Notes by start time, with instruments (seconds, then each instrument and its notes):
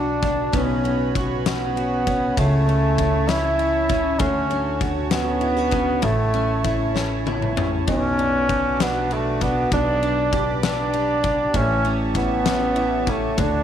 Already playing: upright bass B1, steel-string acoustic guitar B2 D4 F#4, flugelhorn D4
0.22 steel-string acoustic guitar D4, kick, ride
0.53 upright bass B1, steel-string acoustic guitar B3, flugelhorn C#4, accordion F#4 B4 C#5 B5, kick, ride
0.84 steel-string acoustic guitar C#4, ride
1.15 steel-string acoustic guitar F#4, kick, ride
1.46 flugelhorn B3, steel-string acoustic guitar C#4, snare, ride
1.76 steel-string acoustic guitar F#4, ride
2.07 steel-string acoustic guitar C#4, kick, ride
2.37 upright bass C#2, steel-string acoustic guitar C#3, flugelhorn A3, accordion E4 C#5 A5 C#6, kick, ride
2.66 steel-string acoustic guitar C#4, ride
2.97 steel-string acoustic guitar E4, kick, ride
3.27 steel-string acoustic guitar C#4, flugelhorn E4, snare, ride
3.59 steel-string acoustic guitar E4, ride
3.89 steel-string acoustic guitar C#4, kick, ride
4.19 upright bass D2, steel-string acoustic guitar D3, flugelhorn C#4, accordion F#4 C#5, kick, ride
4.50 steel-string acoustic guitar C#4, ride
4.81 steel-string acoustic guitar F#4, kick, ride
5.11 flugelhorn B3, steel-string acoustic guitar C#4, snare, ride
5.41 steel-string acoustic guitar E4, ride
5.57 steel-string acoustic guitar F#4
5.71 steel-string acoustic guitar C#4, kick, ride
6.02 upright bass A1, steel-string acoustic guitar A2, flugelhorn A3, accordion E4 C#5, kick, ride
6.34 steel-string acoustic guitar C#4, ride
6.64 steel-string acoustic guitar E4, kick, ride
6.95 steel-string acoustic guitar C#4, snare
7.26 steel-string acoustic guitar E4, high tom
7.42 mid tom
7.56 steel-string acoustic guitar C#4, mid tom
7.86 upright bass B1, steel-string acoustic guitar B2, flugelhorn C#4, accordion F#4 B4 D6, kick, ride
8.18 steel-string acoustic guitar D4, ride
8.49 steel-string acoustic guitar F#4, kick, ride
8.80 flugelhorn B3, steel-string acoustic guitar D4, snare, ride
9.11 flugelhorn A3, steel-string acoustic guitar F#4, ride
9.41 flugelhorn B3, steel-string acoustic guitar D4, kick, ride
9.70 upright bass B1, steel-string acoustic guitar B3, flugelhorn D4, accordion G4 D5 B5, kick, ride
10.03 steel-string acoustic guitar D4, ride
10.33 steel-string acoustic guitar G4, kick, ride
10.63 steel-string acoustic guitar D4, flugelhorn D4, snare, ride
10.94 steel-string acoustic guitar G4, ride
11.23 steel-string acoustic guitar D4, kick, ride
11.53 upright bass A1, steel-string acoustic guitar A2, flugelhorn C#4, accordion E5 A5 C#6, kick, ride
11.85 steel-string acoustic guitar C#4, ride
12.14 flugelhorn B3, steel-string acoustic guitar E4, kick, ride
12.46 steel-string acoustic guitar C#4, snare, ride
12.76 steel-string acoustic guitar E4, ride
13.07 flugelhorn A3, steel-string acoustic guitar C#4, kick, ride
13.37 upright bass D2, steel-string acoustic guitar D3, flugelhorn D4, accordion F#4 C#5, kick, ride